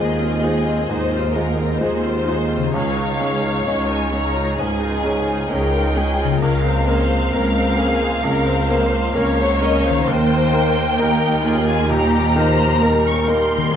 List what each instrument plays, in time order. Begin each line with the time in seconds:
Already playing: double bass section D#2, cello section D#2, grand piano D#2 G#3 F4 C5, harp D#3 C4 F4 G#4, viola section D#4 G#4, violin section G#4 D#5
0.20 viola section C4 F4
0.43 grand piano G#3 F4 C5, viola section D#4 G#4
0.67 viola section C4 F4
0.89 cello section D#2, double bass section D#2, grand piano G#2, viola section D#4 G#4, violin section C5
1.13 viola section C4 F4
1.35 grand piano G#3 F4 C5, viola section D#4 G#4, violin section A#4
1.59 viola section C4 F4
1.80 cello section D#2, double bass section D#2, grand piano G#3 F4 C5, viola section D#4 G#4, violin section C5
2.05 viola section C4 F4
2.27 grand piano G#3 F4 C5, viola section D#4 G#4
2.50 viola section C4 F4
2.57 harp C#3
2.61 harp C#4
2.66 harp D#4
2.70 grand piano C#2, viola section C#4 G#4, harp G#4, violin section C#5
2.75 cello section C#2, double bass section C#2, violin section F5
2.97 viola section D#4 F4
3.20 grand piano G#3 D#4 C#5, viola section C#4 G#4
3.43 viola section D#4 F4
3.66 double bass section C#2, cello section C#2, grand piano G#3 D#4 C#5, viola section C#4 G#4
3.89 viola section D#4 F4, violin section G#5
4.12 grand piano G#3 D#4 C#5, viola section C#4 G#4, violin section A#5
4.35 viola section D#4 F4
4.58 double bass section C#2, cello section C#2, grand piano G#2, viola section C#4 G#4, violin section G#4 G#5
4.81 viola section D#4 F4
5.03 grand piano G#3 D#4 C#5, viola section C#4 G#4
5.26 viola section D#4 F4
5.49 double bass section C#2, cello section C#2, grand piano G#3 D#4 C#5, viola section C#4 G#4, violin section A#4 G5
5.74 viola section D#4 F4
5.94 grand piano G#3 D#4 C#5, viola section C#4 G#4, violin section G#4
6.19 viola section D#4 F4
6.24 harp C#3
6.28 harp A#3
6.33 harp F4
6.37 cello section C#2, harp A#4, violin section A#4 F5
6.41 double bass section C#2, grand piano C#2, viola section C#4 A#4
6.64 viola section C4 C5
6.86 grand piano A#3 C4 A#4, viola section C#4 A#4, violin section C5
7.10 viola section C4 C5
7.33 cello section C#2, double bass section C#2, grand piano A#3 C4 A#4, viola section C#4 A#4, violin section A#4
7.55 viola section C4 C5
7.79 grand piano A#3 C4 A#4, viola section C#4 A#4, violin section G#4
8.01 viola section C4 C5
8.23 cello section C#2, grand piano C#2, double bass section C#2, viola section C#4 A#4, violin section A#4
8.47 viola section C4 C5
8.69 grand piano A#3 C4 A#4, viola section C#4 A#4, violin section C5
8.92 viola section C4 C5
9.15 cello section C#2, double bass section C#2, grand piano A#3 C#4 A#4, viola section C#4 A#4, violin section C#5
9.39 viola section C4 C5
9.61 grand piano A#3 C#4 A#4, viola section C#4 A#4, violin section D#5
9.85 viola section C4 C5, violin section F5
9.90 harp D#3
9.94 harp A#3
9.99 harp D#4
10.03 harp A#4, violin section C5
10.07 grand piano D#2, double bass section D#2, cello section D#2, viola section A#3 A#4, violin section G5
10.53 grand piano A#3 D#4 A#4
10.99 grand piano A#3 D#4 A#4, viola section D#4, violin section A#4
11.44 grand piano A#3 D#4 A#4, viola section F4, violin section G#4
11.69 violin section G#5
11.90 grand piano A#2, viola section G3 G4, violin section G4 A#5
12.36 viola section F3, grand piano A#3 D#4 A#4, violin section C5
12.82 viola section G3 A#4, grand piano A#3 D#4 A#4, violin section A#4
13.07 violin section C#6
13.28 grand piano A#3 D#4 A#4, violin section C6
13.57 harp D#3
13.61 harp C4
13.66 harp F4
13.71 harp G#3